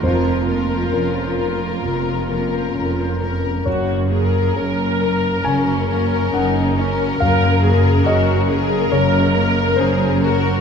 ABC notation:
X:1
M:4/4
L:1/16
Q:1/4=67
K:Gblyd
V:1 name="Violin section"
B2 B4 B4 B4 B2 | z2 B4 B4 B4 B2- | B2 B4 B4 B4 B2 |]
V:2 name="Viola section"
F12- F2 z2 | G2 A2 B4 D4 E2 D2 | B2 A2 G2 A2 B4 A2 G2 |]
V:3 name="Grand piano"
c4 B8- B2 z2 | d8 a4 g4 | f4 e4 d4 c4 |]
V:4 name="Grand piano"
F,,2 B,2 D2 B2 C,2 B,2 D2 B2 | G,,2 B,2 D2 B2 D,2 B,2 D2 B2 | G,,2 B,2 D2 B2 D,2 B,2 D2 B2 |]
V:5 name="Harp"
[F,,B,B] B,2 c B c2 B, C B, D c B c D B, | G,, B, D B D B D B, D, B, D B D B D B, | G,, D, D B D B D B, D, B, D B D B D B, |]
V:6 name="Cello section" clef=bass
F,,4 F,,4 F,,4 F,,4 | G,,4 G,,4 G,,4 G,,4 | G,,4 G,,4 G,,4 G,,4 |]
V:7 name="Double bass section" clef=bass
F,,,4 F,,,4 F,,,4 F,,,4 | G,,,4 G,,,4 G,,,4 G,,,4 | G,,,4 G,,,4 G,,,4 G,,,4 |]